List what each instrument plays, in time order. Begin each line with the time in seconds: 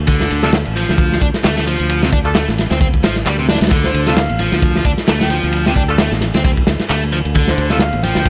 0.00 fingered electric bass D2
0.07 overdriven electric guitar D3, kick, closed hi-hat, ride
0.20 snare, closed hi-hat
0.30 fingered electric bass D2, ride
0.43 overdriven electric guitar C3, horn section A3 D4 F4 A4, snare, closed hi-hat
0.52 snare, clap, closed hi-hat, ride
0.65 fingered electric bass A1, closed hi-hat, ride
0.76 overdriven electric guitar F3, ride
0.89 fingered electric bass D2, snare, closed hi-hat
0.98 kick, closed hi-hat, ride
1.12 snare, closed hi-hat
1.21 fingered electric bass D2, overdriven electric guitar D4, kick, ride
1.34 muted fingered electric bass stroke, snare, closed hi-hat
1.44 fingered electric bass D2, overdriven electric guitar A3, snare, clap, closed hi-hat, ride
1.57 overdriven electric guitar A3, snare, closed hi-hat
1.67 overdriven electric guitar F3, ride
1.80 fingered electric bass D2, closed hi-hat
1.89 closed hi-hat, ride
2.02 overdriven electric guitar C3, snare, closed hi-hat
2.12 fingered electric bass D2, overdriven electric guitar D4, kick, ride
2.25 horn section A3 D4 F4 A4, closed hi-hat
2.35 overdriven electric guitar A3, snare, clap, closed hi-hat, ride
2.48 fingered electric bass A1, snare, closed hi-hat
2.58 snare, ride
2.71 fingered electric bass D2, overdriven electric guitar C4, snare, closed hi-hat
2.80 overdriven electric guitar C4, kick, closed hi-hat, ride
2.94 kick, closed hi-hat
3.03 fingered electric bass A1, overdriven electric guitar F3, snare, ride
3.16 snare, closed hi-hat
3.26 fingered electric bass D2, overdriven electric guitar G3, clap, closed hi-hat, ride
3.39 overdriven electric guitar C3, closed hi-hat
3.49 overdriven electric guitar D4, snare, ride
3.55 snare, ride
3.61 fingered electric bass D2, snare, closed hi-hat, ride
3.67 snare, ride
3.71 overdriven electric guitar D3, kick, closed hi-hat, ride
3.84 soft synth lead C5, snare, closed hi-hat
3.94 fingered electric bass D2, soft synth lead C5, ride
4.07 overdriven electric guitar C3, horn section A3 D4 F4 A4, soft synth lead F5, snare, closed hi-hat
4.16 snare, clap, closed hi-hat, ride
4.29 fingered electric bass A1, closed hi-hat, ride, high conga
4.39 overdriven electric guitar F3, ride, low conga
4.52 fingered electric bass D2, snare, closed hi-hat
4.62 kick, closed hi-hat, ride
4.75 snare, closed hi-hat
4.85 fingered electric bass D2, overdriven electric guitar D4, kick, ride
4.98 snare, closed hi-hat
5.08 fingered electric bass D2, overdriven electric guitar A3, snare, clap, closed hi-hat, ride
5.20 overdriven electric guitar A3, soft synth lead G5, snare, closed hi-hat, low conga
5.30 overdriven electric guitar F3, ride
5.43 fingered electric bass D2, closed hi-hat, high conga
5.52 closed hi-hat, ride
5.66 overdriven electric guitar C3, soft synth lead G5, snare, closed hi-hat
5.75 fingered electric bass D2, overdriven electric guitar D4, soft synth lead G5, kick, ride
5.89 horn section A3 D4 F4 A4, closed hi-hat
5.98 overdriven electric guitar A3, snare, clap, closed hi-hat, ride
6.11 fingered electric bass A1, snare, closed hi-hat, high conga
6.21 snare, ride, low conga
6.34 fingered electric bass D2, overdriven electric guitar C4, snare, closed hi-hat
6.44 overdriven electric guitar C4, kick, closed hi-hat, ride
6.57 kick, closed hi-hat
6.67 fingered electric bass D2, snare, ride
6.80 muted fingered electric bass stroke, snare, closed hi-hat
6.89 fingered electric bass D2, overdriven electric guitar A3, clap, closed hi-hat, ride
7.03 closed hi-hat
7.12 overdriven electric guitar F3, ride
7.25 fingered electric bass D2, closed hi-hat
7.35 overdriven electric guitar D3, kick, closed hi-hat, ride
7.48 soft synth lead C5, snare, closed hi-hat
7.58 fingered electric bass D2, soft synth lead C5, ride
7.70 overdriven electric guitar C3, horn section A3 D4 F4 A4, soft synth lead F5, snare, closed hi-hat
7.79 snare, clap, closed hi-hat, ride
7.93 fingered electric bass A1, closed hi-hat, ride, high conga
8.03 overdriven electric guitar F3, soft synth lead G5, ride, low conga
8.15 fingered electric bass D2, snare, closed hi-hat
8.25 kick, ride